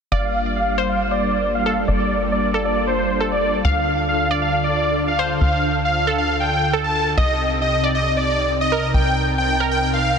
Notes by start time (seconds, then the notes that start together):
0.12 G1 G3 A#3 D4 F4 D5 F5
0.56 F5
0.78 C5
0.89 F5
1.11 D5
1.55 F5
1.66 A4
1.88 G1 D5
2.32 D5
2.54 A4
2.65 D5
2.87 C5
3.20 A4
3.32 D5
3.64 D2 D3 A4 F5
4.09 F5
4.31 D5
4.42 F5
4.64 D5
5.08 F5
5.19 C5
5.41 D2 F5
5.85 F5
6.07 A4
6.18 F5
6.40 G5
6.73 A4
6.84 A5
7.17 C2 C3 C4 D#4 G4 D#5
7.62 D#5
7.84 D5
7.95 D#5
8.17 D5
8.61 D#5
8.72 A#4
8.94 C2 G5 A5
9.38 G5
9.60 A#4
9.71 G5
9.93 F5